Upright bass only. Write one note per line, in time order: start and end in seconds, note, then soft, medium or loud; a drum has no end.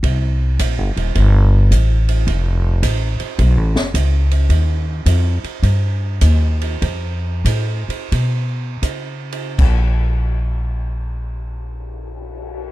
0.03 0.57 C2 medium
0.60 0.78 A#1 medium
0.78 0.96 G1 medium
0.97 1.14 D#1 medium
1.15 1.69 G1 medium
1.71 2.25 A1 medium
2.27 2.81 F1 medium
2.83 3.17 A1 medium
3.21 muted upright bass stroke soft
3.39 3.57 B1 medium
3.57 3.75 A1 medium
3.75 3.93 F#1 medium
3.94 4.48 C#2 medium
4.49 5.04 D#2 medium
5.06 5.41 F2 medium
5.44 muted upright bass stroke soft
5.63 6.19 G2 medium
6.21 6.80 D#2 medium
6.82 7.43 F2 medium
7.45 7.86 A2 medium
7.89 muted upright bass stroke soft
8.12 8.81 B2 medium
8.82 9.57 C#3 medium
9.59 12.72 A#1 medium